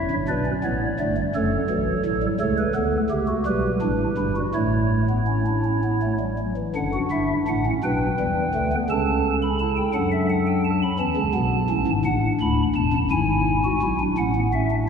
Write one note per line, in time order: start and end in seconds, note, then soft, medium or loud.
0.00 0.14 E4 medium
0.00 0.14 C#5 medium
0.00 0.14 E5 medium
0.11 0.26 G1 medium
0.11 0.26 G2 medium
0.28 0.51 B1 medium
0.28 0.51 B2 medium
0.28 0.44 D4 medium
0.28 0.51 B4 medium
0.28 0.98 D5 medium
0.46 0.62 C#4 medium
0.64 0.86 A1 medium
0.64 0.86 A2 medium
0.64 0.86 B3 medium
0.64 0.86 C#5 medium
1.00 1.22 G1 medium
1.00 1.22 G2 medium
1.00 1.15 A3 medium
1.00 1.22 D5 medium
1.17 1.33 G3 medium
1.35 1.57 F#1 medium
1.35 1.57 F#2 medium
1.35 1.57 A3 medium
1.35 2.26 A4 medium
1.35 2.26 C#5 medium
1.70 1.92 B1 medium
1.70 1.92 B2 medium
1.70 1.92 E3 medium
2.05 2.27 A1 medium
2.05 2.27 A2 medium
2.05 2.21 F#3 medium
2.23 2.38 G3 medium
2.40 2.62 C#2 medium
2.40 2.62 C#3 medium
2.40 2.62 A3 medium
2.40 2.73 A4 medium
2.40 2.56 C#5 loud
2.58 2.73 B4 medium
2.75 2.97 D2 medium
2.75 2.97 D3 medium
2.75 2.97 B3 medium
2.75 2.97 A4 medium
3.10 3.32 C#2 medium
3.10 3.32 C#3 medium
3.10 3.32 A3 medium
3.10 3.26 G4 medium
3.28 3.43 F#4 medium
3.46 3.68 B1 medium
3.46 3.68 B2 medium
3.46 4.39 G3 medium
3.46 3.68 G4 medium
3.46 4.39 B4 medium
3.82 4.04 A1 medium
3.82 4.04 A2 medium
3.82 4.04 D4 medium
4.17 4.40 G1 medium
4.17 4.40 G2 medium
4.17 4.33 E4 medium
4.36 4.52 F#4 medium
4.54 6.13 A1 medium
4.54 6.13 A2 medium
4.54 5.02 A3 medium
4.54 6.13 E4 medium
4.54 6.13 C#5 medium
5.10 5.25 B3 medium
5.27 5.43 C#4 medium
5.47 5.62 D4 medium
5.65 5.81 C#4 medium
5.84 6.00 B3 medium
6.02 6.18 A3 medium
6.20 6.36 G3 medium
6.39 6.54 F#3 medium
6.57 6.72 E3 medium
6.76 6.98 F#1 medium
6.76 6.98 F#2 medium
6.76 6.91 D3 medium
6.76 7.46 D4 medium
6.76 6.98 F#5 medium
6.93 7.09 F#4 medium
7.11 7.34 G1 medium
7.11 7.34 G2 medium
7.11 7.34 E4 medium
7.11 7.34 E5 medium
7.48 7.70 A1 medium
7.48 7.70 A2 medium
7.48 7.63 D4 medium
7.48 7.70 F#5 medium
7.66 7.81 C#4 medium
7.84 8.06 B1 medium
7.84 8.06 B2 medium
7.84 8.06 D4 medium
7.84 8.75 B4 medium
7.84 8.75 G5 medium
8.20 8.42 E2 medium
8.20 8.42 E3 medium
8.20 8.42 G3 medium
8.55 8.76 D2 medium
8.55 8.76 D3 medium
8.55 8.70 A3 medium
8.72 8.87 B3 medium
8.90 9.80 C#2 medium
8.90 9.80 C#3 medium
8.90 9.50 C#4 loud
8.90 10.70 A4 medium
8.90 9.35 A5 medium
9.42 9.57 B5 medium
9.60 9.81 E4 medium
9.60 9.75 A5 medium
9.77 9.92 G5 medium
9.94 10.84 F#2 medium
9.94 10.84 F#3 medium
9.94 10.84 D4 medium
9.94 10.09 F#5 medium
10.12 10.27 E5 medium
10.30 10.44 F#5 medium
10.47 10.62 G5 medium
10.65 10.79 A5 medium
10.82 10.97 B5 medium
10.99 11.14 E2 medium
10.99 11.14 E3 medium
10.99 11.21 C#4 medium
10.99 11.90 A5 medium
11.17 11.32 C#2 medium
11.17 11.32 C#3 medium
11.34 11.56 B1 medium
11.34 11.56 B2 loud
11.34 11.56 B3 medium
11.70 11.85 A1 medium
11.70 11.85 A2 medium
11.70 11.92 C#4 medium
11.87 12.02 G#1 medium
11.87 12.02 G#2 medium
12.05 12.27 A1 medium
12.05 12.27 A2 medium
12.05 12.96 D4 medium
12.05 12.27 F#5 medium
12.40 12.63 D1 medium
12.40 12.62 D2 loud
12.40 12.62 B5 medium
12.75 12.91 E1 medium
12.75 12.91 E2 medium
12.75 12.97 A5 medium
12.93 13.08 F#1 loud
12.93 13.08 F#2 medium
13.11 13.72 G#1 loud
13.11 13.72 G#2 loud
13.11 13.57 E4 medium
13.11 14.02 G#5 medium
13.65 13.80 F#4 medium
13.82 14.04 B1 loud
13.82 14.04 B2 medium
13.82 13.97 E4 medium
14.00 14.15 D4 medium
14.18 14.89 A1 loud
14.18 14.89 A2 loud
14.18 14.33 C#4 medium
14.18 14.39 F#5 medium
14.35 14.50 B3 medium
14.53 14.68 C#4 medium
14.53 14.75 E5 medium
14.71 14.86 D4 medium